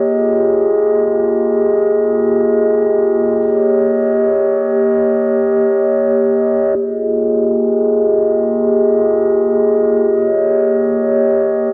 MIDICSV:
0, 0, Header, 1, 2, 480
1, 0, Start_track
1, 0, Key_signature, -4, "minor"
1, 0, Tempo, 500000
1, 11266, End_track
2, 0, Start_track
2, 0, Title_t, "Glass harmonica"
2, 0, Program_c, 0, 92
2, 0, Note_on_c, 0, 58, 70
2, 0, Note_on_c, 0, 67, 66
2, 0, Note_on_c, 0, 75, 81
2, 40, Note_on_c, 0, 65, 69
2, 41, Note_on_c, 0, 68, 66
2, 3221, Note_off_c, 0, 58, 0
2, 3229, Note_off_c, 0, 65, 0
2, 3229, Note_off_c, 0, 68, 0
2, 3258, Note_on_c, 0, 73, 70
2, 3259, Note_on_c, 0, 58, 73
2, 6446, Note_off_c, 0, 67, 0
2, 6446, Note_off_c, 0, 75, 0
2, 6449, Note_off_c, 0, 58, 0
2, 6449, Note_off_c, 0, 73, 0
2, 6482, Note_on_c, 0, 58, 69
2, 6483, Note_on_c, 0, 65, 63
2, 6483, Note_on_c, 0, 67, 62
2, 6483, Note_on_c, 0, 68, 64
2, 6483, Note_on_c, 0, 75, 75
2, 9672, Note_off_c, 0, 65, 0
2, 9672, Note_off_c, 0, 68, 0
2, 9673, Note_off_c, 0, 67, 0
2, 9706, Note_on_c, 0, 67, 65
2, 9706, Note_on_c, 0, 73, 60
2, 11266, Note_off_c, 0, 58, 0
2, 11266, Note_off_c, 0, 67, 0
2, 11266, Note_off_c, 0, 73, 0
2, 11266, Note_off_c, 0, 75, 0
2, 11266, End_track
0, 0, End_of_file